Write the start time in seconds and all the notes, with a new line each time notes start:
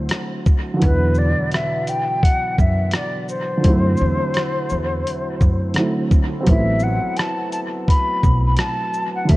Already playing: D3 F#3 A3 C4 E4 C5
0.09 cross-stick, closed hi-hat
0.46 kick, shaker
0.74 D3 F#3
0.79 E2 B2 E3 B4, kick, closed hi-hat
0.85 E4
1.14 D5, shaker
1.52 E5, cross-stick, closed hi-hat
1.87 G5, closed hi-hat, shaker
2.23 F#5, kick, closed hi-hat
2.58 F#2 E5, kick, shaker
2.91 D5, cross-stick, closed hi-hat
3.29 C5, shaker
3.57 D3 F3
3.63 F#2 F#3 A3 C4, kick, closed hi-hat
3.69 E4
3.97 shaker
4.01 E2
4.34 cross-stick, closed hi-hat
4.70 E2, shaker
5.07 closed hi-hat
5.41 F#2, kick, shaker
5.74 D3 F#3 A3, cross-stick, closed hi-hat
5.78 C4 E4
6.11 kick, shaker
6.41 F#3 C4
6.46 A1 A3 B3 E5, kick, closed hi-hat
6.52 E4
6.79 F#5, shaker
7.17 A5, cross-stick, closed hi-hat
7.52 A5, closed hi-hat, shaker
7.88 B5, kick, closed hi-hat
8.23 B1, kick, shaker
8.46 B5
8.57 A5, cross-stick, closed hi-hat
8.94 shaker
9.15 F#5
9.25 D3 F#3 E5, closed hi-hat
9.29 D2 A3, kick
9.33 C4